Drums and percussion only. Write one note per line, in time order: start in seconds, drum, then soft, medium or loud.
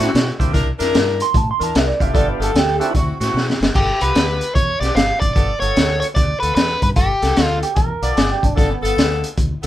0.01 snare soft
0.15 snare loud
0.15 closed hi-hat medium
0.40 kick medium
0.40 closed hi-hat medium
0.54 kick loud
0.54 snare soft
0.54 closed hi-hat medium
0.80 snare soft
0.80 closed hi-hat medium
0.95 snare loud
0.95 closed hi-hat medium
1.20 closed hi-hat medium
1.34 kick loud
1.34 closed hi-hat medium
1.61 closed hi-hat medium
1.75 snare loud
1.75 closed hi-hat medium
2.00 kick medium
2.00 closed hi-hat medium
2.15 kick loud
2.15 closed hi-hat medium
2.42 closed hi-hat medium
2.56 snare loud
2.56 closed hi-hat medium
2.81 closed hi-hat medium
2.95 kick loud
2.95 closed hi-hat medium
3.21 snare soft
3.21 closed hi-hat medium
3.37 snare medium
3.50 snare medium
3.63 snare loud
3.75 kick loud
3.75 crash medium
4.01 closed hi-hat medium
4.15 snare loud
4.15 closed hi-hat medium
4.41 closed hi-hat medium
4.56 kick loud
4.56 closed hi-hat medium
4.82 snare soft
4.82 closed hi-hat medium
4.96 snare loud
4.96 closed hi-hat medium
5.22 kick medium
5.22 closed hi-hat medium
5.36 kick loud
5.36 closed hi-hat medium
5.62 closed hi-hat medium
5.76 snare loud
5.76 closed hi-hat medium
6.02 closed hi-hat medium
6.16 kick loud
6.16 snare soft
6.16 closed hi-hat medium
6.43 closed hi-hat medium
6.57 snare loud
6.57 closed hi-hat medium
6.82 kick medium
6.82 closed hi-hat medium
6.96 kick loud
6.96 closed hi-hat medium
7.22 snare soft
7.22 closed hi-hat medium
7.37 snare loud
7.37 closed hi-hat medium
7.63 closed hi-hat medium
7.76 kick loud
7.76 closed hi-hat medium
8.03 closed hi-hat medium
8.17 snare loud
8.17 closed hi-hat medium
8.43 kick medium
8.43 closed hi-hat medium
8.58 kick loud
8.58 snare soft
8.58 closed hi-hat medium
8.85 closed hi-hat medium
8.98 snare loud
8.98 closed hi-hat medium
9.24 closed hi-hat medium
9.38 kick loud
9.38 closed hi-hat medium
9.63 closed hi-hat medium